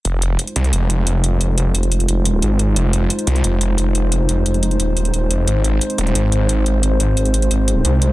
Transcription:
<<
  \new Staff \with { instrumentName = "Analog synth pad" } { \time 4/4 \key f \minor \tempo 4 = 177 << { c''1~ | c''1~ | c''1~ | c''1~ |
c''1~ | c''1 | } \\ { <aes ees' f'>1~ | <aes ees' f'>1~ | <aes ees' f'>1~ | <aes ees' f'>1 |
<aes c'>1~ | <aes c'>1 | } >> }
  \new Staff \with { instrumentName = "Detuned saw bass" } { \clef bass \time 4/4 \key f \minor f,,4 r8 c,8 f,,2~ | f,,8 f,,4. f,,4 aes,,4 | f,,4 r8 c,8 f,,2~ | f,,8 f,,4. ees,,4. f,,8 |
aes,,4 r8 ees,,8 aes,,2~ | aes,,8 aes,,4. aes,,4 c,4 | }
  \new DrumStaff \with { instrumentName = "Drums" } \drummode { \time 4/4 hh8 hh8 hh16 hh16 hh16 hh16 hh8 hh8 hh8 hh8 | hh8 hh8 hh16 hh16 hh16 hh16 hh8 hh8 hh8 hh8 | hh8 hh8 hh16 hh16 hh16 hh16 hh8 hh8 hh8 hh8 | hh8 hh8 hh16 hh16 hh16 hh16 hh8 hh16 hh16 hh8 hh8 |
hh8 hh8 hh16 hh16 hh16 hh16 hh8 hh8 hh8 hh8 | hh8 hh8 hh16 hh16 hh16 hh16 hh8 hh8 hh8 hh8 | }
>>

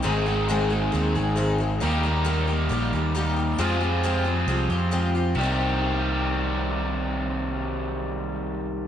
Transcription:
<<
  \new Staff \with { instrumentName = "Twelve-string acoustic guitar" } { \time 4/4 \key c \minor \tempo 4 = 135 <aes, ees aes c' ees' aes'>8 <aes c' ees' aes'>8 <aes, ees aes c' ees' aes'>8 <aes c' ees' aes'>8 <aes c' ees' aes'>8 <aes c' ees' aes'>8 <aes, ees aes c' ees' aes'>8 <aes c' ees' aes'>8 | <ees g bes ees' g'>8 <bes ees' g'>8 <ees g bes ees' g'>8 <bes ees' g'>8 <g bes ees' g'>8 <bes ees' g'>8 <ees g bes ees' g'>8 <bes ees' g'>8 | <f aes c' f' g'>8 <c' f' g'>8 <f aes c' f' g'>8 <c' f' g'>8 <aes c' f' g'>8 <c' f' g'>8 <f aes c' f' g'>8 <c' f' g'>8 | <c g c' ees' g'>1~ |
<c g c' ees' g'>1 | }
  \new Staff \with { instrumentName = "Overdriven electric guitar" } { \time 4/4 \key c \minor <aes, ees aes c' ees' aes'>1 | <ees g bes ees' g'>1 | <f c' f' aes'>1 | <c ees g c' g'>1~ |
<c ees g c' g'>1 | }
  \new Staff \with { instrumentName = "Fingered electric bass" } { \clef bass \time 4/4 \key c \minor aes,,2 ees,8 aes,,4. | ees,2 bes,,8 ees,4. | f,2 c,8 f,4. | c,1~ |
c,1 | }
>>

